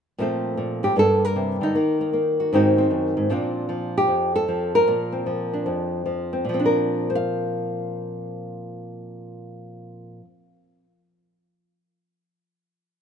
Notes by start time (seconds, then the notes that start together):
0.18 A#2 F3 A3 C4 A4
0.57 A#2
0.83 A2 G4
0.96 G2 G3 A#3 A4
1.25 A#4
1.36 C3
1.61 D3 D#4
1.75 D#3 A#3
2.01 A#3
2.13 A#3
2.40 F#4
2.53 G#2 D#3 C4 D#4 F#4
2.78 C4
2.91 F#2
3.17 G#2
3.30 A#2 F3 C4 D4 F4
3.69 F3
3.98 G4
4.08 F2
4.36 A4
4.48 F3
4.75 A#4
4.88 A#2
5.12 C4
5.26 F3
5.53 D4
5.66 F2
6.06 F3
6.33 C4
6.45 A#2
6.49 F3
6.54 C4
6.60 D4
6.66 A#4
7.10 C5
7.15 F5